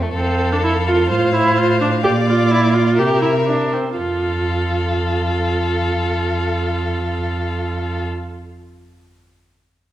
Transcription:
0.00 0.10 F2 soft
0.00 0.14 A3 soft
0.14 1.13 F2 soft
0.14 0.54 C4 medium
0.14 1.06 A4 soft
0.14 2.93 F5 soft
0.52 0.63 D4 soft
0.64 0.72 E4 medium
0.87 1.10 F4 medium
1.10 2.06 A2 soft
1.10 1.34 F4 medium
1.10 1.99 C5 soft
1.35 1.59 E4 medium
1.58 1.81 F4 medium
1.81 1.89 D4 medium
2.04 3.00 A#2 soft
2.04 2.12 G4 medium
2.04 2.94 D5 soft
2.28 2.53 F4 medium
2.51 2.76 E4 medium
2.74 3.00 F4 medium
2.97 3.76 C3 soft
2.97 3.21 G4 medium
2.97 3.72 A#4 soft
2.97 3.72 E5 soft
3.22 3.30 E4 soft
3.46 3.74 D4 soft
3.73 3.97 C4 soft
3.98 8.05 F2 soft
3.98 8.04 F4 soft
3.98 8.05 A4 soft
3.98 8.04 F5 soft

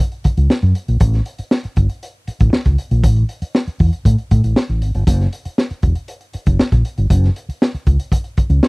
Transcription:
0.00 closed hi-hat medium
0.12 closed hi-hat soft
0.24 muted fingered electric bass stroke soft
0.24 kick medium
0.24 closed hi-hat medium
0.37 0.47 C#2 medium
0.37 closed hi-hat medium
0.50 snare loud
0.63 0.72 F#2 medium
0.63 closed hi-hat soft
0.75 closed hi-hat medium
0.88 0.98 A#1 medium
0.88 closed hi-hat soft
1.00 1.19 A1 loud
1.00 kick loud
1.00 closed hi-hat loud
1.13 snare soft
1.13 closed hi-hat soft
1.26 closed hi-hat medium
1.38 muted fingered electric bass stroke medium
1.38 closed hi-hat medium
1.51 snare loud
1.64 muted fingered electric bass stroke soft
1.64 closed hi-hat soft
1.76 1.86 G1 medium
1.76 kick medium
1.76 closed hi-hat medium
1.89 closed hi-hat medium
2.03 closed hi-hat medium
2.27 muted fingered electric bass stroke soft
2.27 closed hi-hat medium
2.40 2.50 A1 medium
2.40 kick medium
2.40 closed hi-hat medium
2.53 muted fingered electric bass stroke soft
2.53 snare loud
2.65 2.75 C#2 medium
2.65 kick medium
2.65 closed hi-hat soft
2.78 closed hi-hat medium
2.91 3.04 A#1 medium
2.91 closed hi-hat medium
3.03 3.22 A1 loud
3.03 kick loud
3.03 closed hi-hat loud
3.16 closed hi-hat soft
3.29 closed hi-hat medium
3.42 muted fingered electric bass stroke medium
3.42 closed hi-hat medium
3.55 snare loud
3.67 muted fingered electric bass stroke soft
3.67 closed hi-hat soft
3.79 3.89 E2 medium
3.79 kick medium
3.79 open hi-hat medium
3.93 closed hi-hat medium
4.05 4.15 A2 medium
4.05 kick loud
4.05 closed hi-hat medium
4.18 closed hi-hat soft
4.31 4.41 A2 loud
4.31 kick medium
4.31 closed hi-hat medium
4.44 4.53 A1 medium
4.44 closed hi-hat medium
4.56 snare loud
4.69 4.82 A1 medium
4.69 closed hi-hat soft
4.82 4.91 G#1 medium
4.82 closed hi-hat medium
4.95 5.04 G1 medium
4.95 closed hi-hat soft
5.07 5.26 F#1 loud
5.07 kick loud
5.07 closed hi-hat loud
5.20 snare soft
5.20 closed hi-hat soft
5.33 closed hi-hat medium
5.45 muted fingered electric bass stroke soft
5.45 closed hi-hat medium
5.58 snare loud
5.71 muted fingered electric bass stroke soft
5.71 closed hi-hat soft
5.82 5.93 E1 medium
5.82 kick medium
5.82 closed hi-hat medium
5.95 closed hi-hat medium
6.08 closed hi-hat medium
6.21 closed hi-hat soft
6.33 muted fingered electric bass stroke soft
6.33 closed hi-hat medium
6.46 6.56 F#1 medium
6.46 kick medium
6.46 closed hi-hat medium
6.59 muted fingered electric bass stroke soft
6.59 snare loud
6.72 6.81 A#1 medium
6.72 kick medium
6.72 closed hi-hat soft
6.85 closed hi-hat medium
6.98 7.07 G1 medium
6.98 closed hi-hat soft
7.10 7.29 F#1 loud
7.10 kick loud
7.10 closed hi-hat loud
7.24 snare soft
7.24 closed hi-hat soft
7.36 closed hi-hat medium
7.49 muted fingered electric bass stroke soft
7.49 closed hi-hat medium
7.62 snare loud
7.74 muted fingered electric bass stroke soft
7.74 closed hi-hat soft
7.86 7.96 C#2 medium
7.86 kick medium
7.86 closed hi-hat medium
7.99 closed hi-hat medium
8.12 kick medium
8.12 closed hi-hat loud
8.24 closed hi-hat soft
8.37 muted fingered electric bass stroke soft
8.37 kick medium
8.37 closed hi-hat medium
8.50 8.59 C#2 medium
8.50 closed hi-hat medium
8.63 snare loud

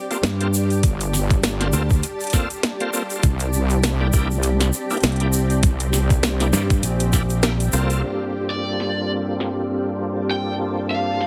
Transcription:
0.00 11.27 G4 medium
0.00 11.27 D5 medium
0.00 5.18 A5 medium
0.10 0.18 A#3 medium
0.10 0.18 C4 medium
0.10 0.18 F4 medium
0.10 0.18 A4 medium
0.10 closed hi-hat soft
0.10 shaker soft
0.23 0.81 G2 medium
0.23 snare loud
0.23 closed hi-hat medium
0.23 shaker soft
0.41 0.48 A#3 medium
0.41 0.48 C4 medium
0.41 0.48 F4 medium
0.41 0.48 A4 medium
0.41 closed hi-hat soft
0.54 shaker medium
0.70 closed hi-hat soft
0.70 shaker soft
0.83 1.71 G1 loud
0.83 kick loud
0.83 closed hi-hat medium
0.83 shaker soft
1.01 closed hi-hat soft
1.01 shaker soft
1.13 snare soft
1.13 shaker medium
1.30 kick loud
1.30 closed hi-hat soft
1.30 shaker soft
1.43 snare loud
1.43 closed hi-hat medium
1.43 shaker medium
1.60 1.68 A#3 medium
1.60 1.68 C4 medium
1.60 1.68 F4 medium
1.60 1.68 A4 medium
1.60 snare soft
1.60 closed hi-hat soft
1.73 2.01 D2 loud
1.73 1.83 A#3 medium
1.73 1.83 C4 medium
1.73 1.83 F4 medium
1.73 1.83 A4 medium
1.73 shaker medium
1.90 kick loud
1.90 shaker soft
2.03 closed hi-hat medium
2.03 shaker soft
2.20 closed hi-hat soft
2.20 shaker soft
2.24 closed hi-hat soft
2.27 closed hi-hat soft
2.30 2.48 A#3 medium
2.30 2.48 C4 medium
2.30 2.48 F4 medium
2.30 2.48 A4 loud
2.30 kick medium
2.30 snare soft
2.30 closed hi-hat soft
2.30 shaker medium
2.50 closed hi-hat soft
2.50 shaker soft
2.63 snare loud
2.63 closed hi-hat medium
2.63 shaker soft
2.80 2.90 A#3 loud
2.80 2.90 C4 medium
2.80 2.90 F4 medium
2.80 2.90 A4 loud
2.80 closed hi-hat soft
2.93 3.03 A#3 loud
2.93 3.03 C4 medium
2.93 3.03 F4 medium
2.93 3.03 A4 loud
2.93 shaker medium
3.10 closed hi-hat soft
3.10 shaker soft
3.23 4.11 C2 medium
3.23 9.97 C4 medium
3.23 kick loud
3.23 closed hi-hat medium
3.23 shaker medium
3.39 closed hi-hat medium
3.39 shaker soft
3.53 shaker medium
3.70 closed hi-hat soft
3.70 shaker soft
3.83 snare loud
3.83 closed hi-hat medium
3.83 shaker soft
4.00 4.08 A#3 medium
4.00 4.08 D4 medium
4.00 4.07 E4 medium
4.00 4.08 G4 loud
4.13 4.71 C2 medium
4.13 4.28 A#3 loud
4.13 4.28 D4 medium
4.13 4.28 E4 medium
4.13 4.28 G4 loud
4.13 kick medium
4.13 shaker medium
4.31 shaker soft
4.43 closed hi-hat medium
4.43 shaker soft
4.60 snare medium
4.60 closed hi-hat medium
4.60 shaker soft
4.73 shaker medium
4.90 4.98 A#3 medium
4.90 4.98 D4 medium
4.90 4.98 E4 medium
4.90 4.98 G4 medium
4.90 closed hi-hat soft
4.90 shaker soft
4.94 closed hi-hat soft
4.97 closed hi-hat soft
5.00 5.61 C2 medium
5.00 snare loud
5.00 closed hi-hat soft
5.00 shaker soft
5.04 closed hi-hat medium
5.12 closed hi-hat soft
5.16 closed hi-hat soft
5.20 5.28 A#3 medium
5.20 5.28 D4 medium
5.20 5.28 E4 medium
5.20 5.28 G4 medium
5.20 closed hi-hat soft
5.33 shaker medium
5.50 closed hi-hat soft
5.50 shaker soft
5.63 6.51 C2 medium
5.63 kick loud
5.63 closed hi-hat medium
5.63 shaker medium
5.80 closed hi-hat medium
5.80 shaker soft
5.93 snare soft
5.93 shaker medium
6.10 kick loud
6.10 closed hi-hat soft
6.10 shaker soft
6.23 snare loud
6.23 closed hi-hat medium
6.23 shaker medium
6.40 6.48 A#3 medium
6.40 6.48 D4 medium
6.40 6.48 E4 medium
6.40 6.48 G4 loud
6.40 snare soft
6.40 closed hi-hat medium
6.40 shaker soft
6.53 6.81 G2 medium
6.53 6.63 A#3 medium
6.53 6.63 D4 medium
6.53 6.63 E4 medium
6.53 6.63 G4 medium
6.53 snare medium
6.53 shaker medium
6.70 kick medium
6.70 closed hi-hat soft
6.70 shaker soft
6.83 7.71 A#1 loud
6.83 closed hi-hat medium
6.83 shaker soft
7.00 closed hi-hat medium
7.00 shaker soft
7.13 7.23 A#3 medium
7.13 7.23 D4 medium
7.13 7.23 E4 medium
7.13 7.23 G4 medium
7.13 kick medium
7.13 snare soft
7.13 shaker medium
7.30 closed hi-hat soft
7.30 shaker soft
7.43 7.53 A#3 loud
7.43 7.53 D4 medium
7.43 7.53 E4 medium
7.43 7.53 G4 loud
7.43 snare loud
7.43 closed hi-hat medium
7.43 shaker medium
7.60 closed hi-hat soft
7.60 shaker soft
7.73 8.01 C2 medium
7.73 8.02 A#3 medium
7.73 8.02 C4 medium
7.73 8.02 F4 medium
7.73 8.02 A4 medium
7.73 shaker medium
7.90 closed hi-hat soft
7.90 shaker soft
8.03 11.27 G2 medium
8.03 11.27 A#3 medium
8.03 11.27 C4 medium
8.03 11.27 D4 medium
8.03 11.27 F4 medium
8.03 11.27 A4 medium
8.50 9.10 D5 medium
8.80 snare soft
9.13 11.27 A5 medium
9.40 snare soft
10.31 10.53 G5 medium
10.91 11.27 F5 medium
11.21 snare soft

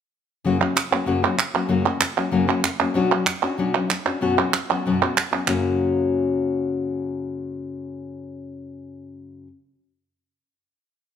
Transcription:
0.45 0.60 F#2 medium
0.45 0.60 C#3 medium
0.45 0.60 F#3 medium
0.45 0.59 A#3 medium
0.45 0.58 C#4 medium
0.45 0.58 F#4 medium
0.59 0.75 F#3 soft
0.59 0.74 A#3 soft
0.59 0.75 C#4 soft
0.59 0.75 F#4 soft
0.75 muted nylon-string guitar stroke medium
0.75 clap medium
0.91 1.06 F#3 soft
0.91 1.06 A#3 soft
0.91 1.06 C#4 soft
0.91 1.06 F#4 medium
1.06 1.22 F#2 medium
1.06 1.22 C#3 medium
1.06 1.22 F#3 medium
1.06 1.22 A#3 medium
1.06 1.22 C#4 medium
1.06 1.22 F#4 medium
1.23 1.37 F#3 soft
1.23 1.38 A#3 soft
1.23 1.37 C#4 soft
1.23 1.37 F#4 soft
1.23 clap soft
1.38 muted nylon-string guitar stroke medium
1.38 clap medium
1.54 1.68 F#3 soft
1.54 1.68 A#3 soft
1.54 1.69 C#4 soft
1.54 1.69 F#4 soft
1.54 clap soft
1.68 1.84 F#2 medium
1.68 1.84 C#3 medium
1.68 1.85 F#3 medium
1.68 1.85 A#3 medium
1.68 1.84 C#4 medium
1.68 1.83 F#4 medium
1.85 1.99 F#3 soft
1.85 1.99 A#3 soft
1.85 1.99 C#4 soft
1.85 1.99 F#4 soft
1.85 clap soft
2.00 muted nylon-string guitar stroke medium
2.00 clap medium
2.17 2.31 F#3 soft
2.17 2.31 A#3 soft
2.17 2.32 C#4 soft
2.17 2.31 F#4 medium
2.17 clap soft
2.31 2.47 F#2 medium
2.31 2.47 C#3 medium
2.31 2.47 F#3 medium
2.31 2.47 A#3 medium
2.31 2.47 C#4 medium
2.31 2.46 F#4 medium
2.47 2.63 F#3 soft
2.47 2.63 A#3 medium
2.47 2.63 C#4 soft
2.47 2.63 F#4 medium
2.47 clap soft
2.64 muted nylon-string guitar stroke medium
2.64 clap medium
2.80 2.94 F#3 soft
2.80 2.95 A#3 medium
2.80 2.95 C#4 medium
2.80 2.95 F#4 medium
2.80 clap soft
2.94 3.10 B2 medium
2.94 3.10 F#3 medium
2.94 3.10 C#4 medium
2.94 3.11 D4 medium
2.94 3.10 F#4 medium
3.11 3.26 C#4 soft
3.11 3.25 D4 soft
3.11 3.26 F#4 medium
3.11 clap soft
3.26 muted nylon-string guitar stroke medium
3.26 clap medium
3.42 3.58 C#4 medium
3.42 3.58 D4 soft
3.42 3.58 F#4 medium
3.42 clap soft
3.58 3.73 B2 medium
3.58 3.74 F#3 medium
3.58 3.74 C#4 medium
3.58 3.74 D4 medium
3.58 3.72 F#4 medium
3.74 3.88 C#4 soft
3.74 3.88 D4 soft
3.74 3.88 F#4 medium
3.74 clap soft
3.89 muted nylon-string guitar stroke medium
3.89 clap medium
4.05 4.21 C#4 soft
4.05 4.21 D4 soft
4.05 4.21 F#4 medium
4.05 clap soft
4.21 4.36 F#2 medium
4.21 4.37 B2 medium
4.21 4.37 F#3 medium
4.21 4.37 B3 medium
4.21 4.36 C#4 medium
4.21 4.36 F#4 medium
4.37 4.52 F#3 soft
4.37 4.53 B3 soft
4.37 4.53 C#4 soft
4.37 4.52 F#4 medium
4.37 clap soft
4.53 muted nylon-string guitar stroke medium
4.53 clap medium
4.69 4.85 F#3 soft
4.69 4.85 B3 soft
4.69 4.85 C#4 soft
4.69 4.84 F#4 soft
4.69 clap soft
4.86 5.00 F#2 medium
4.86 5.01 B2 medium
4.86 5.01 F#3 medium
4.86 5.01 B3 medium
4.86 5.01 C#4 medium
4.86 5.00 F#4 medium
5.01 5.16 F#3 soft
5.01 5.16 B3 soft
5.01 5.16 C#4 soft
5.01 5.16 F#4 soft
5.01 clap soft
5.16 muted nylon-string guitar stroke medium
5.16 clap medium
5.31 5.47 F#3 soft
5.31 5.47 B3 soft
5.31 5.47 C#4 soft
5.31 5.47 F#4 soft
5.31 clap soft
5.47 9.47 F#2 medium
5.47 9.47 C#3 medium
5.47 9.47 F#3 medium
5.47 9.48 A#3 medium
5.47 9.48 C#4 medium
5.47 9.48 F#4 medium
5.47 clap medium

